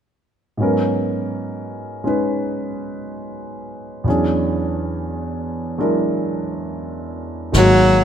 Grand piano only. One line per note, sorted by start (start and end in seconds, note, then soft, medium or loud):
0.57 4.05 G#2 soft
0.57 4.05 F#3 soft
0.57 4.06 B3 soft
0.62 2.04 C#4 soft
0.62 4.07 A#4 soft
2.04 4.05 G#3 soft
2.04 4.06 C#4 soft
2.04 4.07 D#4 soft
2.04 4.07 B4 soft
4.04 7.53 E2 soft
4.04 7.53 E3 soft
4.04 5.77 F#3 soft
4.04 7.55 C#4 soft
4.09 5.78 D4 soft
4.09 7.55 G#4 soft
5.78 7.53 F#3 soft
5.78 7.52 G#3 soft
5.78 7.54 D4 soft
5.78 7.54 E4 soft
5.78 7.54 A#4 soft
7.52 8.04 D#3 soft
7.52 8.04 F#3 soft
7.52 8.04 G#3 soft
7.52 8.04 A#3 soft
7.57 8.04 F#4 soft